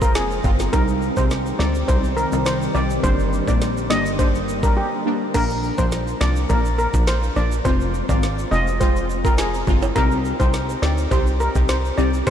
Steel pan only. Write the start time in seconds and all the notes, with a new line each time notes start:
0.02 A#4
0.15 G#4
0.73 A#4
1.17 C5
1.59 D5
1.88 C5
2.17 A#4
2.46 C5
2.75 D5
3.03 C5
3.48 D5
3.90 D#5
4.19 C5
4.63 A#4
4.77 G4
5.34 A#4
5.78 C5
6.21 D5
6.49 A#4
6.78 A#4
7.07 C5
7.36 D5
7.65 C5
8.09 D5
8.51 D#5
8.80 C5
9.25 A#4
9.38 G#4
9.96 A#4
10.40 C5
10.82 D5
11.11 C5
11.40 A#4
11.69 C5
11.98 D5
12.27 C5